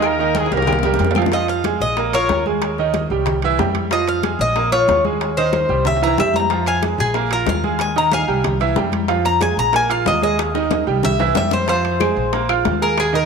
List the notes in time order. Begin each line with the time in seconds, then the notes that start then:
Already playing: D#2 D#3 D#4 D#5
0.02 A#3 D#4 A#4, cowbell, low agogo, claves
0.19 D#3 D#4 D#5, high conga
0.35 G#3 D#4 G#4, cowbell, high conga, high timbale, low agogo
0.46 high timbale
0.51 C2 G3 A#3 G4 A#4, high bongo, high conga, low agogo
0.57 high timbale
0.62 high bongo
0.67 cowbell, high conga, low conga, high timbale, low agogo, claves
0.72 high bongo
0.79 low timbale
0.83 G3 G4 A#4, cowbell, low bongo, high conga, low conga
0.94 low bongo
0.99 F2, cowbell, high conga, low timbale, low agogo
1.04 low bongo
1.11 low timbale
1.15 F3 F4 F5, low bongo, high conga, low agogo, claves
1.22 low timbale
1.26 low bongo
1.32 F3 F4 D#5 F5, high bongo, high conga, high timbale
1.48 F5, high conga, high timbale
1.64 G#3 G#4 G#5, high bongo, high conga, high timbale
1.80 A#1 D#5, high conga
1.97 A#3 A#4 A#5, high bongo, high conga, high timbale
2.13 F4 A#4 C#5 F5 F6, high conga, high timbale
2.29 D#2, high bongo, low bongo, high conga, high timbale
2.46 G#3 G#4 G#5, high conga
2.62 high bongo, high conga, high timbale
2.78 D#3 D#4 D#5, high bongo, high conga
2.94 high bongo, high conga, high timbale
3.10 C2 G3 G4 G5, high conga
3.26 high bongo, high conga, low conga, high timbale
3.42 E3 E4 E5, high bongo, high conga, high timbale
3.59 F2 G3 G4 G5, high bongo, low bongo, high conga, low timbale
3.75 high bongo, high conga, high timbale
3.91 F3 F4 D#5 F5, high bongo, high conga, high timbale
4.07 F5, high conga, high timbale
4.23 G#3 G#4 G#5, high bongo, high conga, high timbale
4.39 A#1 D#5, high conga
4.56 A#3 A#4 A#5, high bongo, high conga, high timbale
4.72 F4 C#5 F5 F6, high conga, high timbale
4.88 D#2, high bongo, low bongo, high conga, high timbale, low timbale
5.05 G#3 G#4 G#5, high conga
5.21 high bongo, high conga, high timbale
5.37 D#3 D#4 C5 D#5, high bongo, high conga
5.53 high bongo, high conga, high timbale
5.69 C2 G3 G4 G5, high conga
5.85 E5, high bongo, high conga, low conga, high timbale
5.97 high timbale
6.02 E3 E4 E5 A#5, high conga
6.07 high timbale
6.17 F2 G3 G4 E5 G5, high bongo, low bongo, high conga
6.34 A#5, high bongo, high conga
6.40 low timbale
6.50 F3 F4 F5, high bongo, high conga, high timbale
6.66 F5 G#5, high conga, high timbale
6.83 G#3 G#4 G#5, high bongo, high conga, high timbale
6.98 A#1 G#4, high conga
7.14 A#3 A#4 A#5, high bongo, high conga, high timbale
7.31 F4 A#4 F5 F6, high conga, high timbale
7.47 D#2 F5, high bongo, low bongo, high conga, high timbale, low timbale
7.64 G#3 G#4 G#5, high conga
7.79 G#5, high bongo, high conga, high timbale
7.96 D#3 D#4 D#5 A#5, high bongo, high conga
8.12 F5 G#5, high bongo, high conga, high timbale
8.28 C2 G3 G4 G5, high conga
8.44 high bongo, high conga, low conga, high timbale
8.60 E3 E4 E5, high bongo, high conga, high timbale
8.76 F2 G3 G4 G5, high bongo, low bongo, high conga
8.92 high bongo, high conga, high timbale
9.08 F3 F4 F5, high bongo, high conga, high timbale
9.25 A#5, high conga, high timbale
9.41 G#3 G#4 G#5, high bongo, high conga, high timbale
9.57 A#1 A#5, high conga
9.73 A#3 A#4 G#5 A#5, high bongo, high conga, high timbale
9.90 F4 F5 F6, high conga, high timbale
10.06 D#2 D#5, high bongo, low bongo, high conga, high timbale, low timbale
10.22 G#3 G#4 D#5 G#5, high conga
10.39 high bongo, high conga, high timbale
10.54 D#3 D#4 D#5, high bongo, high conga
10.71 low bongo, high conga, high timbale
10.87 C2 G3 G4 G5, high conga
11.03 E5, low bongo, high conga, low conga, high timbale
11.19 E3 E4 E5, low bongo, high conga, low conga, high timbale
11.35 F2 G3 G4 E5 G5, low bongo, high conga, low timbale
11.51 C5, low bongo, high conga, low timbale
11.68 F3 F4 C5 F5, high bongo, high conga, high timbale
11.85 high conga, high timbale
12.00 G#3 G#4 G#5, high bongo, high conga, high timbale, claves
12.17 A#1, high conga
12.33 A#3 A#4 A#5, high bongo, high conga, high timbale
12.49 F4 F5 F6, high conga, high timbale, claves
12.65 D#2, high bongo, low bongo, high conga, high timbale
12.82 G#3 G#4 A#4 G#5
12.98 G#4, high bongo, high conga, high timbale, claves
13.13 D#3 D#4 A#4 D#5, high bongo, high conga